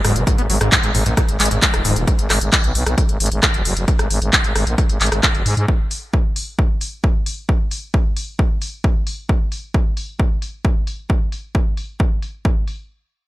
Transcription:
0.04 F#1 G#2, cross-stick, open hi-hat
0.16 F#1 B2, closed hi-hat
0.27 G#2, kick, closed hi-hat
0.38 G#1 B3, closed hi-hat
0.50 G#1 F#3, open hi-hat
0.61 G#1 G#2, cross-stick, closed hi-hat
0.72 kick, clap, closed hi-hat
0.83 G#1 G#2, closed hi-hat
0.95 G#1 G#2, open hi-hat
1.06 A#1 G#2, closed hi-hat
1.17 G#2, kick, cross-stick, closed hi-hat
1.29 G#1, closed hi-hat
1.40 G#1 G#3, clap, open hi-hat
1.45 closed hi-hat
1.51 G#1 G#2, closed hi-hat
1.62 kick, clap, closed hi-hat
1.74 D#1, cross-stick, closed hi-hat
1.85 D#1 G#2, open hi-hat
1.96 D#1 B2, closed hi-hat
2.08 kick, closed hi-hat
2.19 G#1, closed hi-hat
2.30 G#1, cross-stick, clap, open hi-hat
2.41 G#1, closed hi-hat
2.53 kick, clap, closed hi-hat
2.64 B1, closed hi-hat
2.75 B1, open hi-hat
2.86 B1, cross-stick, closed hi-hat
2.98 kick, closed hi-hat
3.09 G#1, closed hi-hat
3.20 G#1, open hi-hat
3.26 closed hi-hat
3.32 closed hi-hat
3.43 kick, cross-stick, clap, closed hi-hat
3.54 F#1, closed hi-hat
3.65 F#1, open hi-hat
3.77 F#1, closed hi-hat
3.88 kick, closed hi-hat
3.99 G#1, cross-stick, closed hi-hat
4.10 G#1, open hi-hat
4.22 G#1, closed hi-hat
4.33 kick, clap, closed hi-hat
4.44 G#1, closed hi-hat
4.56 G#1, cross-stick, open hi-hat
4.67 A#1, closed hi-hat
4.78 kick, closed hi-hat
4.89 G#1, closed hi-hat
5.01 G#1, clap, open hi-hat
5.06 closed hi-hat
5.12 G#1, cross-stick, closed hi-hat
5.23 kick, clap, closed hi-hat
5.35 F#1, closed hi-hat
5.46 G#2, open hi-hat
5.57 G#2, closed hi-hat
5.68 kick
5.91 open hi-hat
6.14 kick
6.36 open hi-hat
6.59 kick
6.81 open hi-hat
7.04 kick
7.26 open hi-hat
7.49 kick
7.71 open hi-hat
7.94 kick
8.17 open hi-hat
8.39 kick
8.62 open hi-hat
8.84 kick
9.07 open hi-hat
9.29 kick
9.52 open hi-hat
9.74 kick
9.97 open hi-hat
10.20 kick
10.42 open hi-hat
10.65 kick
10.87 open hi-hat
11.10 kick
11.32 open hi-hat
11.55 kick
11.77 open hi-hat
12.00 kick
12.22 open hi-hat
12.45 kick
12.68 open hi-hat

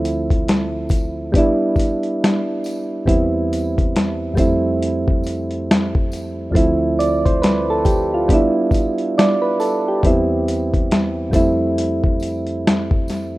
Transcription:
Already playing: D2 F3 A3 C4 E4
0.05 closed hi-hat, tambourine
0.30 kick, closed hi-hat
0.48 snare, closed hi-hat
0.89 kick, closed hi-hat, tambourine
1.32 G3 B3 D4, kick, closed hi-hat
1.38 E4
1.76 kick, closed hi-hat, tambourine
2.03 closed hi-hat
2.24 snare, closed hi-hat
2.64 closed hi-hat, tambourine
3.05 E2 G3 B3 C4 E4, kick, closed hi-hat
3.53 closed hi-hat, tambourine
3.78 kick, closed hi-hat
3.96 snare, closed hi-hat
4.34 F2 G3 A3, kick, tambourine
4.38 C4 E4, closed hi-hat
4.82 closed hi-hat
5.08 kick
5.24 closed hi-hat, tambourine
5.51 closed hi-hat
5.71 snare, closed hi-hat
5.95 kick
6.12 closed hi-hat, tambourine
6.51 D2 F3 A3
6.55 C4 E4, kick, closed hi-hat
6.99 D5, closed hi-hat, tambourine
7.25 C5, kick, closed hi-hat
7.42 B4, snare, closed hi-hat
7.70 A4
7.85 G4, kick, closed hi-hat, tambourine
8.14 F4
8.28 G3 B3 D4, kick, closed hi-hat
8.34 E4
8.71 kick, closed hi-hat, tambourine
8.98 closed hi-hat
9.18 D5, snare, closed hi-hat
9.42 B4
9.60 A4, closed hi-hat, tambourine
9.88 G4
10.03 E2 G3 B3 C4 E4, kick, closed hi-hat
10.48 closed hi-hat, tambourine
10.74 kick, closed hi-hat
10.91 snare, closed hi-hat
11.30 F2 G3 A3, kick, tambourine
11.34 C4 E4, closed hi-hat
11.78 closed hi-hat
12.04 kick
12.20 closed hi-hat, tambourine
12.47 closed hi-hat
12.67 snare, closed hi-hat
12.91 kick
13.08 snare, closed hi-hat, tambourine

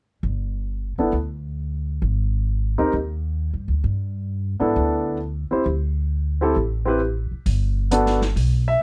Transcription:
0.23 G1
0.98 F#1 B3 D4 E4 A4
1.13 D2
2.02 G#1
2.78 D#2 C4 D#4 G4 A#4
2.93 D#2
3.54 G2
3.68 D2
3.84 G2
4.60 G#2 B3 D4 E4 A4
4.76 D2
5.51 C4 E4 G4 C5, muted upright bass stroke
5.66 D2
6.41 C4 E4 G4 A4
6.56 A1
6.85 C4 E4 G4 B4
7.31 muted upright bass stroke
7.46 G1, kick, open hi-hat
7.91 B3 D4 F#4 A4, closed hi-hat
8.06 snare
8.21 snare
8.36 B1, kick, open hi-hat
8.68 E5

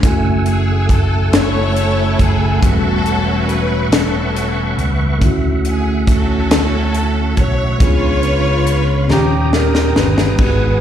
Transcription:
0.01 F#1 A3 C#4 E4 F#5 G#5 E6, kick, closed hi-hat
0.06 A3 F#4 G#5
0.46 G#4, closed hi-hat
0.89 A4, kick, closed hi-hat
1.33 F#1 E4 A4 C#5, snare, closed hi-hat
1.76 closed hi-hat
2.19 F#1 G#4, kick, closed hi-hat
2.59 E1 E3 A3 B3 C#4, kick, closed hi-hat
2.63 G3 C#4 F#4 A4 B4 E5 C#6
3.06 closed hi-hat
3.49 B4, closed hi-hat
3.92 E1 C#4 F#4 A4, snare, closed hi-hat
4.36 closed hi-hat
4.78 C#2, closed hi-hat
5.18 D2 D3 A3 C#4, kick, closed hi-hat
5.23 E4 F#4 E5
5.65 closed hi-hat
5.69 G#4
6.07 C#4 F#4, kick, closed hi-hat
6.11 A4
6.51 D2, snare, closed hi-hat
6.94 closed hi-hat
7.37 B1 C#5, kick, closed hi-hat
7.79 C#2 C#3 B3 C#4 D4 F4 B4 C#5 F5 B5, kick, closed hi-hat
7.83 G#4
8.23 closed hi-hat
8.67 closed hi-hat
9.08 D#2 A#2 D#3 C#4 D#4 G4 G5 A#5 D#6, snare
9.13 G4
9.53 A#4, snare
9.75 snare
9.95 G1 B4, snare
10.18 snare
10.34 G#2 G#3 B3 D#4, crash
10.39 G#1 B3 F#4 G4 F#5 G#5 D#6, kick
10.49 G#4

